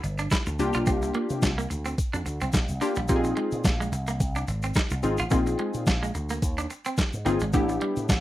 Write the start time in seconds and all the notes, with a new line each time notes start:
0.04 G1, muted clean electric guitar stroke, closed hi-hat, shaker
0.18 D4, closed hi-hat, shaker
0.31 E4, kick, snare, clap, closed hi-hat, shaker
0.46 D2, muted clean electric guitar stroke, shaker
0.59 C2 A#3 D4 F4 G4, closed hi-hat, shaker
0.73 B1 F4, closed hi-hat, shaker
0.86 C2 C4, kick, closed hi-hat, shaker
1.02 muted clean electric guitar stroke, closed hi-hat, shaker
1.14 A#3, closed hi-hat
1.30 C3, closed hi-hat, shaker
1.42 C2, kick, snare, clap, closed hi-hat, shaker
1.58 A#3, closed hi-hat, shaker
1.70 D2, muted clean electric guitar stroke, closed hi-hat, shaker
1.85 C4, closed hi-hat, shaker
1.98 kick, closed hi-hat, shaker
2.13 F2 D4, shaker
2.26 D2, muted clean electric guitar stroke, closed hi-hat, shaker
2.41 C2 C4, closed hi-hat, shaker
2.53 A#1, muted clean electric guitar stroke, kick, snare, clap, closed hi-hat, shaker
2.69 C2, closed hi-hat, shaker
2.81 A#3 D4 F4 G4, open hi-hat, shaker
2.95 A#1 G3, closed hi-hat, shaker
3.08 A#1 A#3 C4 D#4 F4 G4, kick, closed hi-hat, shaker
3.16 G#4
3.24 muted clean electric guitar stroke, closed hi-hat, shaker
3.37 G#3, closed hi-hat
3.52 A#2, closed hi-hat, shaker
3.64 A#1, kick, snare, clap, closed hi-hat, shaker
3.80 G#3, shaker
3.92 C2, muted clean electric guitar stroke, closed hi-hat, shaker
4.07 A#3, closed hi-hat, shaker
4.20 C2, kick, closed hi-hat, shaker
4.35 D4, closed hi-hat, shaker
4.48 G#1, muted clean electric guitar stroke, closed hi-hat, shaker
4.63 C4, closed hi-hat, shaker
4.74 D#4, kick, snare, clap, closed hi-hat, shaker
4.90 C2, muted clean electric guitar stroke, shaker
5.03 G#1 C4 D#4 F4 G#4, closed hi-hat, shaker
5.18 A1 F4, closed hi-hat, shaker
5.30 A#1 A#3 C4 D#4 F4 G#4, kick, closed hi-hat, shaker
5.47 muted clean electric guitar stroke, closed hi-hat, shaker
5.59 G#3, closed hi-hat
5.74 A#2, closed hi-hat, shaker
5.86 A#1, kick, snare, clap, closed hi-hat, shaker
6.03 G#3, shaker
6.15 D2, muted clean electric guitar stroke, closed hi-hat, shaker
6.29 A#3, closed hi-hat, shaker
6.42 D#2, kick, closed hi-hat, shaker
6.58 D4, closed hi-hat, shaker
6.70 muted clean electric guitar stroke, closed hi-hat, shaker
6.85 C4, closed hi-hat, shaker
6.97 muted clean electric guitar stroke, kick, snare, clap, closed hi-hat, shaker
7.13 G#2, shaker
7.25 G1 A#3 C4 D#4 F4 G#4, closed hi-hat, shaker
7.40 G#1 G#3, closed hi-hat, shaker
7.53 A1 A3 B3 D4 E4 G4, kick, closed hi-hat, shaker
7.69 muted clean electric guitar stroke, closed hi-hat, shaker
7.81 G3, closed hi-hat
7.96 A2, closed hi-hat, shaker
8.09 A1, kick, snare, clap, closed hi-hat, shaker